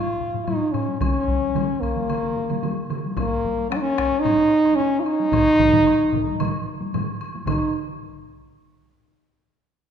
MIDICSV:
0, 0, Header, 1, 4, 480
1, 0, Start_track
1, 0, Tempo, 540054
1, 904, Time_signature, 4, 2, 24, 8
1, 4739, Tempo, 533333
1, 8855, End_track
2, 0, Start_track
2, 0, Title_t, "French horn"
2, 0, Program_c, 0, 60
2, 0, Note_on_c, 0, 65, 94
2, 398, Note_on_c, 0, 63, 84
2, 412, Note_off_c, 0, 65, 0
2, 642, Note_on_c, 0, 61, 76
2, 655, Note_off_c, 0, 63, 0
2, 889, Note_off_c, 0, 61, 0
2, 894, Note_on_c, 0, 61, 95
2, 1607, Note_on_c, 0, 58, 85
2, 1620, Note_off_c, 0, 61, 0
2, 2576, Note_off_c, 0, 58, 0
2, 2821, Note_on_c, 0, 58, 95
2, 3269, Note_off_c, 0, 58, 0
2, 3291, Note_on_c, 0, 61, 94
2, 3345, Note_on_c, 0, 63, 78
2, 3358, Note_off_c, 0, 61, 0
2, 3390, Note_on_c, 0, 61, 102
2, 3403, Note_off_c, 0, 63, 0
2, 3739, Note_on_c, 0, 63, 114
2, 3753, Note_off_c, 0, 61, 0
2, 4228, Note_on_c, 0, 61, 99
2, 4241, Note_off_c, 0, 63, 0
2, 4442, Note_on_c, 0, 65, 65
2, 4455, Note_off_c, 0, 61, 0
2, 4476, Note_on_c, 0, 63, 113
2, 4489, Note_off_c, 0, 65, 0
2, 6171, Note_off_c, 0, 63, 0
2, 6668, Note_on_c, 0, 63, 76
2, 6888, Note_off_c, 0, 63, 0
2, 8855, End_track
3, 0, Start_track
3, 0, Title_t, "Taiko and cinematic ensemble drums"
3, 57, Note_on_c, 9, 45, 67
3, 146, Note_off_c, 9, 45, 0
3, 184, Note_on_c, 9, 45, 65
3, 273, Note_off_c, 9, 45, 0
3, 304, Note_on_c, 9, 45, 66
3, 306, Note_on_c, 9, 48, 54
3, 393, Note_off_c, 9, 45, 0
3, 395, Note_off_c, 9, 48, 0
3, 423, Note_on_c, 9, 45, 94
3, 423, Note_on_c, 9, 48, 64
3, 512, Note_off_c, 9, 45, 0
3, 512, Note_off_c, 9, 48, 0
3, 657, Note_on_c, 9, 45, 98
3, 746, Note_off_c, 9, 45, 0
3, 788, Note_on_c, 9, 48, 54
3, 877, Note_off_c, 9, 48, 0
3, 896, Note_on_c, 9, 41, 108
3, 898, Note_on_c, 9, 47, 84
3, 909, Note_on_c, 9, 48, 70
3, 985, Note_off_c, 9, 41, 0
3, 987, Note_off_c, 9, 47, 0
3, 998, Note_off_c, 9, 48, 0
3, 1138, Note_on_c, 9, 41, 76
3, 1143, Note_on_c, 9, 48, 50
3, 1227, Note_off_c, 9, 41, 0
3, 1232, Note_off_c, 9, 48, 0
3, 1265, Note_on_c, 9, 48, 55
3, 1354, Note_off_c, 9, 48, 0
3, 1378, Note_on_c, 9, 47, 94
3, 1389, Note_on_c, 9, 48, 68
3, 1467, Note_off_c, 9, 47, 0
3, 1478, Note_off_c, 9, 48, 0
3, 1619, Note_on_c, 9, 41, 66
3, 1708, Note_off_c, 9, 41, 0
3, 1744, Note_on_c, 9, 47, 68
3, 1747, Note_on_c, 9, 48, 57
3, 1833, Note_off_c, 9, 47, 0
3, 1836, Note_off_c, 9, 48, 0
3, 1860, Note_on_c, 9, 47, 70
3, 1865, Note_on_c, 9, 48, 72
3, 1949, Note_off_c, 9, 47, 0
3, 1953, Note_off_c, 9, 48, 0
3, 1977, Note_on_c, 9, 47, 69
3, 2066, Note_off_c, 9, 47, 0
3, 2100, Note_on_c, 9, 47, 76
3, 2189, Note_off_c, 9, 47, 0
3, 2220, Note_on_c, 9, 47, 70
3, 2232, Note_on_c, 9, 48, 60
3, 2308, Note_off_c, 9, 47, 0
3, 2321, Note_off_c, 9, 48, 0
3, 2335, Note_on_c, 9, 47, 94
3, 2351, Note_on_c, 9, 48, 68
3, 2424, Note_off_c, 9, 47, 0
3, 2439, Note_off_c, 9, 48, 0
3, 2576, Note_on_c, 9, 47, 95
3, 2665, Note_off_c, 9, 47, 0
3, 2713, Note_on_c, 9, 48, 59
3, 2802, Note_off_c, 9, 48, 0
3, 2814, Note_on_c, 9, 41, 105
3, 2816, Note_on_c, 9, 45, 98
3, 2830, Note_on_c, 9, 48, 76
3, 2903, Note_off_c, 9, 41, 0
3, 2905, Note_off_c, 9, 45, 0
3, 2919, Note_off_c, 9, 48, 0
3, 3061, Note_on_c, 9, 41, 71
3, 3069, Note_on_c, 9, 48, 48
3, 3150, Note_off_c, 9, 41, 0
3, 3157, Note_off_c, 9, 48, 0
3, 3188, Note_on_c, 9, 48, 57
3, 3277, Note_off_c, 9, 48, 0
3, 3305, Note_on_c, 9, 37, 74
3, 3309, Note_on_c, 9, 48, 65
3, 3394, Note_off_c, 9, 37, 0
3, 3398, Note_off_c, 9, 48, 0
3, 3540, Note_on_c, 9, 37, 70
3, 3541, Note_on_c, 9, 41, 64
3, 3629, Note_off_c, 9, 37, 0
3, 3629, Note_off_c, 9, 41, 0
3, 3663, Note_on_c, 9, 48, 52
3, 3751, Note_off_c, 9, 48, 0
3, 3779, Note_on_c, 9, 48, 70
3, 3781, Note_on_c, 9, 45, 97
3, 3868, Note_off_c, 9, 48, 0
3, 3870, Note_off_c, 9, 45, 0
3, 4143, Note_on_c, 9, 48, 51
3, 4232, Note_off_c, 9, 48, 0
3, 4264, Note_on_c, 9, 48, 55
3, 4353, Note_off_c, 9, 48, 0
3, 4618, Note_on_c, 9, 48, 44
3, 4707, Note_off_c, 9, 48, 0
3, 4728, Note_on_c, 9, 41, 95
3, 4735, Note_on_c, 9, 48, 57
3, 4736, Note_on_c, 9, 45, 109
3, 4739, Note_on_c, 9, 47, 88
3, 4818, Note_off_c, 9, 41, 0
3, 4825, Note_off_c, 9, 48, 0
3, 4826, Note_off_c, 9, 45, 0
3, 4829, Note_off_c, 9, 47, 0
3, 4974, Note_on_c, 9, 41, 70
3, 4976, Note_on_c, 9, 45, 100
3, 4977, Note_on_c, 9, 47, 104
3, 4979, Note_on_c, 9, 48, 42
3, 5064, Note_off_c, 9, 41, 0
3, 5066, Note_off_c, 9, 45, 0
3, 5067, Note_off_c, 9, 47, 0
3, 5069, Note_off_c, 9, 48, 0
3, 5097, Note_on_c, 9, 48, 50
3, 5100, Note_on_c, 9, 45, 96
3, 5100, Note_on_c, 9, 47, 103
3, 5187, Note_off_c, 9, 48, 0
3, 5190, Note_off_c, 9, 45, 0
3, 5190, Note_off_c, 9, 47, 0
3, 5214, Note_on_c, 9, 48, 54
3, 5304, Note_off_c, 9, 48, 0
3, 5454, Note_on_c, 9, 41, 70
3, 5456, Note_on_c, 9, 45, 101
3, 5470, Note_on_c, 9, 47, 97
3, 5544, Note_off_c, 9, 41, 0
3, 5546, Note_off_c, 9, 45, 0
3, 5560, Note_off_c, 9, 47, 0
3, 5582, Note_on_c, 9, 48, 52
3, 5672, Note_off_c, 9, 48, 0
3, 5702, Note_on_c, 9, 48, 70
3, 5703, Note_on_c, 9, 45, 97
3, 5708, Note_on_c, 9, 47, 107
3, 5792, Note_off_c, 9, 48, 0
3, 5793, Note_off_c, 9, 45, 0
3, 5798, Note_off_c, 9, 47, 0
3, 6066, Note_on_c, 9, 48, 57
3, 6156, Note_off_c, 9, 48, 0
3, 6188, Note_on_c, 9, 47, 100
3, 6191, Note_on_c, 9, 45, 97
3, 6191, Note_on_c, 9, 48, 68
3, 6278, Note_off_c, 9, 47, 0
3, 6281, Note_off_c, 9, 45, 0
3, 6281, Note_off_c, 9, 48, 0
3, 6553, Note_on_c, 9, 48, 59
3, 6643, Note_off_c, 9, 48, 0
3, 6660, Note_on_c, 9, 41, 77
3, 6663, Note_on_c, 9, 47, 95
3, 6668, Note_on_c, 9, 45, 115
3, 6671, Note_on_c, 9, 48, 80
3, 6750, Note_off_c, 9, 41, 0
3, 6753, Note_off_c, 9, 47, 0
3, 6758, Note_off_c, 9, 45, 0
3, 6761, Note_off_c, 9, 48, 0
3, 8855, End_track
4, 0, Start_track
4, 0, Title_t, "Drums"
4, 422, Note_on_c, 9, 76, 43
4, 511, Note_off_c, 9, 76, 0
4, 660, Note_on_c, 9, 76, 44
4, 749, Note_off_c, 9, 76, 0
4, 903, Note_on_c, 9, 76, 55
4, 992, Note_off_c, 9, 76, 0
4, 1385, Note_on_c, 9, 76, 42
4, 1474, Note_off_c, 9, 76, 0
4, 1629, Note_on_c, 9, 76, 42
4, 1717, Note_off_c, 9, 76, 0
4, 1863, Note_on_c, 9, 76, 50
4, 1952, Note_off_c, 9, 76, 0
4, 2220, Note_on_c, 9, 76, 39
4, 2309, Note_off_c, 9, 76, 0
4, 2341, Note_on_c, 9, 76, 40
4, 2429, Note_off_c, 9, 76, 0
4, 2581, Note_on_c, 9, 76, 38
4, 2670, Note_off_c, 9, 76, 0
4, 2821, Note_on_c, 9, 76, 52
4, 2909, Note_off_c, 9, 76, 0
4, 3300, Note_on_c, 9, 76, 40
4, 3389, Note_off_c, 9, 76, 0
4, 3536, Note_on_c, 9, 76, 44
4, 3625, Note_off_c, 9, 76, 0
4, 3782, Note_on_c, 9, 76, 47
4, 3871, Note_off_c, 9, 76, 0
4, 4135, Note_on_c, 9, 76, 41
4, 4224, Note_off_c, 9, 76, 0
4, 4255, Note_on_c, 9, 76, 40
4, 4344, Note_off_c, 9, 76, 0
4, 4497, Note_on_c, 9, 76, 42
4, 4586, Note_off_c, 9, 76, 0
4, 4738, Note_on_c, 9, 76, 60
4, 4828, Note_off_c, 9, 76, 0
4, 5220, Note_on_c, 9, 76, 43
4, 5310, Note_off_c, 9, 76, 0
4, 5700, Note_on_c, 9, 76, 62
4, 5790, Note_off_c, 9, 76, 0
4, 6188, Note_on_c, 9, 76, 44
4, 6278, Note_off_c, 9, 76, 0
4, 6428, Note_on_c, 9, 76, 46
4, 6518, Note_off_c, 9, 76, 0
4, 6668, Note_on_c, 9, 76, 74
4, 6758, Note_off_c, 9, 76, 0
4, 8855, End_track
0, 0, End_of_file